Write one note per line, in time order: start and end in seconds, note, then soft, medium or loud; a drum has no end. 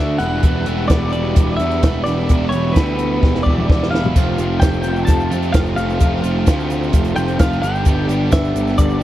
0.00 0.18 D2 medium
0.00 0.18 D3 medium
0.00 0.19 A3 medium
0.00 0.18 D4 medium
0.00 4.12 D4 medium
0.00 0.18 F#4 medium
0.00 0.17 A4 medium
0.00 0.18 E5 loud
0.00 0.17 F#5 medium
0.00 0.18 B5 medium
0.00 0.18 E6 medium
0.18 0.41 E1 medium
0.18 0.42 E2 medium
0.18 0.42 B2 medium
0.18 0.43 E3 medium
0.18 0.44 G3 medium
0.18 0.44 B3 medium
0.18 0.45 E4 loud
0.18 7.59 G4 medium
0.18 4.11 E5 medium
0.18 0.88 F#5 loud
0.18 4.11 B5 medium
0.18 0.85 F#6 medium
0.18 snare soft
0.18 closed hi-hat medium
0.43 0.64 E1 loud
0.43 0.89 E2 medium
0.43 0.88 B2 medium
0.43 0.68 E3 loud
0.43 0.68 G3 loud
0.43 0.67 B3 loud
0.43 0.66 E4 loud
0.43 kick loud
0.43 closed hi-hat medium
0.66 0.88 E1 medium
0.66 0.89 E3 medium
0.66 0.90 G3 medium
0.66 0.90 B3 medium
0.66 0.91 E4 medium
0.66 closed hi-hat medium
0.88 1.11 E1 medium
0.88 1.83 E2 medium
0.88 1.83 B2 medium
0.88 1.61 E3 medium
0.88 1.61 G3 medium
0.88 1.59 B3 loud
0.88 1.58 E4 loud
0.88 1.11 D5 medium
0.88 1.08 D6 medium
0.88 kick loud
0.88 snare loud
0.88 closed hi-hat medium
1.10 1.56 D5 medium
1.10 1.55 D6 medium
1.10 closed hi-hat medium
1.15 1.35 E1 medium
1.36 1.57 E1 medium
1.36 kick loud
1.36 closed hi-hat loud
1.57 1.81 E2 medium
1.57 1.84 B3 medium
1.57 1.85 E4 medium
1.57 2.03 E5 medium
1.57 2.02 E6 medium
1.57 closed hi-hat medium
1.61 1.82 E3 medium
1.61 1.85 G3 medium
1.71 closed hi-hat soft
1.83 2.04 E1 medium
1.83 2.08 E3 medium
1.83 2.08 G3 medium
1.83 2.06 B3 medium
1.83 kick loud
1.83 snare loud
1.83 closed hi-hat loud
1.87 2.06 E4 medium
2.04 2.27 E1 medium
2.04 2.32 B3 medium
2.04 2.32 E4 medium
2.04 2.49 D5 loud
2.04 2.48 D6 medium
2.04 snare soft
2.04 closed hi-hat medium
2.09 2.30 E3 medium
2.09 2.32 G3 medium
2.29 2.51 E1 loud
2.29 2.75 E2 medium
2.29 2.76 B2 medium
2.29 2.55 E3 medium
2.29 2.55 G3 medium
2.29 kick loud
2.29 closed hi-hat loud
2.33 2.54 B3 loud
2.33 2.53 E4 loud
2.49 2.75 C#5 medium
2.49 2.74 C#6 medium
2.49 closed hi-hat medium
2.53 2.74 E1 medium
2.53 2.77 E3 medium
2.53 2.78 G3 medium
2.53 2.78 B3 medium
2.53 2.78 E4 medium
2.73 3.18 D2 medium
2.73 3.46 B4 loud
2.73 3.41 B5 medium
2.73 kick loud
2.73 closed hi-hat loud
2.77 3.69 E2 medium
2.77 3.70 B2 medium
2.77 3.48 E3 medium
2.77 3.48 G3 medium
2.77 3.46 B3 medium
2.77 3.45 E4 medium
2.77 snare loud
2.99 closed hi-hat medium
3.22 3.43 E1 medium
3.22 kick loud
3.22 snare medium
3.35 snare medium
3.43 3.67 E1 medium
3.43 3.71 E4 medium
3.43 3.90 D5 medium
3.43 3.88 D6 medium
3.43 kick medium
3.48 3.68 E3 medium
3.48 3.70 G3 medium
3.48 3.71 B3 medium
3.58 mid tom medium
3.69 3.90 E1 medium
3.69 3.94 E3 medium
3.69 3.94 G3 medium
3.69 3.93 B3 medium
3.69 3.92 E4 medium
3.69 kick loud
3.69 snare medium
3.83 snare medium
3.91 4.13 E1 medium
3.91 4.17 G3 medium
3.91 4.15 B3 medium
3.91 4.15 E4 medium
3.91 4.59 F5 loud
3.91 4.58 F6 medium
3.95 4.16 E3 medium
3.95 snare medium
4.05 floor tom medium
4.16 4.37 F1 medium
4.16 4.61 F2 loud
4.16 4.61 C3 loud
4.16 4.41 F3 loud
4.16 4.40 A3 loud
4.16 4.39 C4 loud
4.16 4.38 F4 medium
4.16 7.60 C5 medium
4.16 7.61 F5 medium
4.16 9.03 A5 medium
4.16 kick loud
4.16 crash medium
4.16 splash medium
4.16 shaker loud
4.38 4.60 F1 medium
4.38 4.63 F3 medium
4.38 4.63 A3 medium
4.38 4.64 C4 medium
4.38 4.64 F4 medium
4.38 closed hi-hat medium
4.38 shaker medium
4.60 4.83 F1 medium
4.60 5.55 F2 medium
4.60 5.55 C3 medium
4.60 5.33 F3 medium
4.60 5.33 A3 medium
4.60 4.81 G5 loud
4.60 4.83 G6 medium
4.60 kick loud
4.60 snare loud
4.60 closed hi-hat loud
4.60 shaker medium
4.64 5.30 C4 medium
4.64 5.30 F4 medium
4.73 shaker soft
4.82 5.06 F1 medium
4.82 5.04 G5 medium
4.82 5.06 G6 medium
4.82 closed hi-hat medium
4.82 shaker medium
4.96 shaker soft
5.05 5.29 F1 medium
5.05 5.52 A5 medium
5.05 5.51 A6 medium
5.05 kick loud
5.05 closed hi-hat loud
5.05 shaker medium
5.20 shaker soft
5.31 5.52 F2 medium
5.31 5.53 F3 medium
5.31 5.55 A3 medium
5.31 5.54 C4 medium
5.31 5.56 F4 medium
5.31 closed hi-hat medium
5.31 shaker medium
5.42 closed hi-hat soft
5.42 shaker soft
5.53 5.75 F1 medium
5.53 5.79 F3 medium
5.53 5.79 A3 medium
5.53 5.77 C4 medium
5.53 5.59 F5 loud
5.53 5.64 F6 medium
5.53 kick loud
5.53 snare loud
5.53 closed hi-hat loud
5.53 shaker medium
5.57 5.76 F4 medium
5.66 shaker soft
5.76 5.98 F1 medium
5.76 6.01 A3 medium
5.76 6.01 C4 medium
5.76 6.01 F4 medium
5.76 7.16 F5 medium
5.76 7.13 F6 medium
5.76 closed hi-hat medium
5.76 shaker medium
5.80 6.00 F3 medium
5.89 shaker soft
5.99 6.22 F1 loud
5.99 6.44 F2 medium
5.99 6.45 C3 medium
5.99 6.23 F3 loud
5.99 6.23 A3 loud
5.99 6.21 C4 medium
5.99 6.21 F4 loud
5.99 kick loud
5.99 closed hi-hat loud
5.99 shaker loud
6.22 6.45 F1 medium
6.22 6.45 F3 medium
6.22 6.47 A3 medium
6.22 6.47 C4 medium
6.22 6.47 F4 medium
6.22 closed hi-hat medium
6.22 shaker medium
6.45 6.89 D2 medium
6.45 7.39 F2 medium
6.45 7.40 C3 medium
6.45 7.18 F3 medium
6.45 7.17 A3 medium
6.45 7.16 C4 medium
6.45 7.15 F4 loud
6.45 kick loud
6.45 snare loud
6.45 closed hi-hat medium
6.45 shaker medium
6.60 shaker soft
6.70 closed hi-hat medium
6.70 shaker medium
6.83 shaker soft
6.93 7.14 F1 medium
6.93 kick loud
6.93 closed hi-hat loud
6.93 shaker medium
7.04 closed hi-hat soft
7.04 shaker soft
7.16 7.38 F1 medium
7.16 7.38 F3 medium
7.16 7.40 A3 medium
7.16 7.40 C4 medium
7.16 7.40 F4 medium
7.16 7.39 G5 medium
7.16 7.38 G6 medium
7.16 closed hi-hat medium
7.16 shaker medium
7.28 closed hi-hat soft
7.28 shaker soft
7.39 7.61 F1 medium
7.39 7.62 F3 medium
7.39 7.63 A3 medium
7.39 7.62 C4 medium
7.39 7.62 F4 medium
7.39 7.61 F5 loud
7.39 7.62 F6 medium
7.39 kick loud
7.39 snare loud
7.39 closed hi-hat loud
7.39 shaker medium
7.52 shaker soft
7.62 7.84 G1 loud
7.62 7.85 G2 medium
7.62 7.85 D3 medium
7.62 7.87 G3 medium
7.62 7.87 B3 medium
7.62 7.87 D4 medium
7.62 7.88 G4 medium
7.62 8.06 G5 loud
7.62 8.06 G6 medium
7.62 closed hi-hat medium
7.62 shaker medium
7.66 9.03 G4 medium
7.66 9.03 B4 medium
7.66 9.03 D5 medium
7.75 shaker soft
7.85 8.07 G1 medium
7.85 8.31 G2 medium
7.85 8.31 D3 loud
7.85 8.11 G3 loud
7.85 8.10 B3 loud
7.85 8.10 D4 loud
7.85 8.08 G4 loud
7.85 kick loud
7.85 closed hi-hat medium
7.85 shaker loud
8.08 8.30 G1 medium
8.08 8.32 G3 medium
8.08 8.33 B3 medium
8.08 8.33 D4 medium
8.08 8.34 G4 medium
8.08 closed hi-hat medium
8.08 shaker medium
8.31 9.03 G2 medium
8.31 9.03 D3 medium
8.31 9.01 G3 loud
8.31 9.01 B3 medium
8.31 9.01 D4 medium
8.31 8.99 G4 loud
8.31 8.78 E5 loud
8.31 8.77 E6 medium
8.31 kick loud
8.31 snare loud
8.31 closed hi-hat medium
8.31 shaker loud
8.44 shaker soft
8.55 8.76 G1 medium
8.55 closed hi-hat medium
8.55 shaker medium
8.67 snare soft
8.67 shaker soft
8.78 9.00 G1 medium
8.78 9.03 D5 loud
8.78 9.03 D6 medium
8.78 kick loud
8.78 closed hi-hat loud
8.78 shaker loud
8.89 shaker soft
9.00 9.03 G4 medium